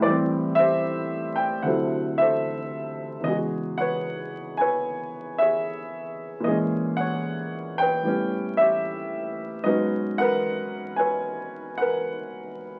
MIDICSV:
0, 0, Header, 1, 2, 480
1, 0, Start_track
1, 0, Tempo, 801068
1, 23, Time_signature, 4, 2, 24, 8
1, 7667, End_track
2, 0, Start_track
2, 0, Title_t, "Upright piano"
2, 0, Program_c, 0, 0
2, 0, Control_c, 0, 64, 127
2, 0, Note_on_c, 0, 45, 69
2, 14, Note_on_c, 0, 74, 93
2, 16, Note_on_c, 0, 52, 56
2, 30, Note_on_c, 0, 67, 68
2, 31, Control_c, 0, 64, 0
2, 38, Note_on_c, 0, 55, 60
2, 61, Note_on_c, 0, 60, 74
2, 89, Note_off_c, 0, 74, 0
2, 135, Control_c, 0, 64, 127
2, 331, Note_on_c, 0, 76, 112
2, 345, Note_off_c, 0, 67, 0
2, 352, Note_on_c, 0, 72, 75
2, 354, Note_on_c, 0, 67, 78
2, 797, Note_off_c, 0, 76, 0
2, 813, Note_on_c, 0, 79, 91
2, 849, Note_off_c, 0, 79, 0
2, 962, Note_off_c, 0, 67, 0
2, 962, Note_off_c, 0, 72, 0
2, 970, Note_off_c, 0, 45, 0
2, 973, Note_on_c, 0, 38, 50
2, 974, Note_on_c, 0, 78, 82
2, 981, Note_off_c, 0, 52, 0
2, 983, Note_on_c, 0, 48, 47
2, 992, Note_off_c, 0, 55, 0
2, 992, Control_c, 0, 64, 0
2, 993, Note_on_c, 0, 54, 47
2, 997, Note_on_c, 0, 72, 57
2, 999, Note_on_c, 0, 69, 56
2, 1001, Note_on_c, 0, 64, 58
2, 1003, Note_off_c, 0, 60, 0
2, 1105, Control_c, 0, 64, 127
2, 1283, Note_off_c, 0, 78, 0
2, 1305, Note_on_c, 0, 76, 100
2, 1317, Note_off_c, 0, 69, 0
2, 1317, Note_off_c, 0, 72, 0
2, 1326, Note_on_c, 0, 69, 64
2, 1326, Note_on_c, 0, 72, 63
2, 1915, Note_on_c, 0, 40, 54
2, 1929, Note_off_c, 0, 69, 0
2, 1929, Note_off_c, 0, 72, 0
2, 1938, Note_on_c, 0, 49, 47
2, 1940, Note_off_c, 0, 38, 0
2, 1941, Note_on_c, 0, 75, 93
2, 1945, Note_off_c, 0, 48, 0
2, 1950, Note_off_c, 0, 54, 0
2, 1953, Control_c, 0, 64, 0
2, 1954, Note_off_c, 0, 64, 0
2, 1959, Note_on_c, 0, 56, 43
2, 1959, Note_on_c, 0, 68, 64
2, 1962, Note_off_c, 0, 76, 0
2, 1962, Note_on_c, 0, 66, 70
2, 1974, Note_off_c, 0, 66, 0
2, 1983, Note_on_c, 0, 66, 61
2, 2015, Note_off_c, 0, 75, 0
2, 2062, Control_c, 0, 64, 127
2, 2263, Note_on_c, 0, 78, 98
2, 2280, Note_on_c, 0, 73, 72
2, 2284, Note_on_c, 0, 71, 69
2, 2741, Note_on_c, 0, 80, 92
2, 2752, Note_off_c, 0, 71, 0
2, 2756, Note_off_c, 0, 73, 0
2, 2761, Note_on_c, 0, 71, 66
2, 2763, Note_off_c, 0, 78, 0
2, 2765, Note_on_c, 0, 73, 74
2, 2889, Note_off_c, 0, 68, 0
2, 3204, Note_off_c, 0, 80, 0
2, 3226, Note_on_c, 0, 76, 100
2, 3238, Note_off_c, 0, 73, 0
2, 3247, Note_on_c, 0, 73, 70
2, 3248, Note_on_c, 0, 68, 60
2, 3694, Note_off_c, 0, 71, 0
2, 3836, Note_on_c, 0, 46, 61
2, 3850, Note_off_c, 0, 68, 0
2, 3850, Note_off_c, 0, 73, 0
2, 3852, Note_off_c, 0, 40, 0
2, 3857, Note_on_c, 0, 52, 59
2, 3860, Note_on_c, 0, 75, 90
2, 3863, Note_off_c, 0, 49, 0
2, 3868, Note_off_c, 0, 56, 0
2, 3876, Control_c, 0, 64, 0
2, 3877, Note_on_c, 0, 56, 53
2, 3878, Note_on_c, 0, 68, 68
2, 3883, Note_off_c, 0, 76, 0
2, 3886, Note_off_c, 0, 66, 0
2, 3899, Note_on_c, 0, 61, 65
2, 3934, Note_off_c, 0, 75, 0
2, 3969, Control_c, 0, 64, 127
2, 4174, Note_on_c, 0, 78, 103
2, 4196, Note_on_c, 0, 73, 77
2, 4662, Note_on_c, 0, 79, 109
2, 4676, Note_off_c, 0, 73, 0
2, 4679, Note_off_c, 0, 78, 0
2, 4684, Note_on_c, 0, 71, 65
2, 4685, Note_on_c, 0, 73, 60
2, 4808, Note_off_c, 0, 68, 0
2, 4811, Note_off_c, 0, 46, 0
2, 4811, Note_on_c, 0, 45, 53
2, 4822, Note_off_c, 0, 52, 0
2, 4822, Note_on_c, 0, 55, 54
2, 4830, Note_on_c, 0, 59, 50
2, 4831, Note_off_c, 0, 61, 0
2, 4832, Note_off_c, 0, 56, 0
2, 4835, Control_c, 0, 64, 0
2, 4840, Note_on_c, 0, 61, 67
2, 4927, Control_c, 0, 64, 127
2, 5124, Note_off_c, 0, 79, 0
2, 5137, Note_on_c, 0, 76, 98
2, 5149, Note_off_c, 0, 73, 0
2, 5158, Note_on_c, 0, 67, 67
2, 5158, Note_on_c, 0, 73, 61
2, 5614, Note_off_c, 0, 71, 0
2, 5754, Note_off_c, 0, 76, 0
2, 5765, Note_off_c, 0, 67, 0
2, 5765, Note_off_c, 0, 73, 0
2, 5774, Note_on_c, 0, 75, 98
2, 5775, Note_on_c, 0, 44, 56
2, 5779, Note_off_c, 0, 45, 0
2, 5781, Note_on_c, 0, 54, 47
2, 5784, Note_off_c, 0, 55, 0
2, 5787, Note_off_c, 0, 59, 0
2, 5788, Note_on_c, 0, 56, 48
2, 5790, Note_on_c, 0, 71, 66
2, 5791, Note_on_c, 0, 66, 62
2, 5793, Note_off_c, 0, 61, 0
2, 5794, Control_c, 0, 64, 0
2, 5796, Note_on_c, 0, 59, 51
2, 5805, Note_on_c, 0, 61, 67
2, 5884, Control_c, 0, 64, 127
2, 6084, Note_off_c, 0, 75, 0
2, 6101, Note_on_c, 0, 78, 113
2, 6111, Note_off_c, 0, 71, 0
2, 6112, Note_on_c, 0, 70, 76
2, 6120, Note_on_c, 0, 71, 79
2, 6570, Note_on_c, 0, 80, 87
2, 6576, Note_off_c, 0, 71, 0
2, 6585, Note_on_c, 0, 71, 68
2, 6588, Note_on_c, 0, 73, 67
2, 6601, Note_off_c, 0, 78, 0
2, 6724, Note_off_c, 0, 66, 0
2, 7037, Note_off_c, 0, 80, 0
2, 7048, Note_off_c, 0, 70, 0
2, 7056, Note_on_c, 0, 78, 95
2, 7068, Note_off_c, 0, 71, 0
2, 7076, Note_on_c, 0, 70, 68
2, 7077, Note_on_c, 0, 71, 65
2, 7525, Note_off_c, 0, 73, 0
2, 7667, Note_off_c, 0, 44, 0
2, 7667, Note_off_c, 0, 54, 0
2, 7667, Note_off_c, 0, 56, 0
2, 7667, Note_off_c, 0, 59, 0
2, 7667, Note_off_c, 0, 61, 0
2, 7667, Note_off_c, 0, 70, 0
2, 7667, Note_off_c, 0, 71, 0
2, 7667, Note_off_c, 0, 78, 0
2, 7667, End_track
0, 0, End_of_file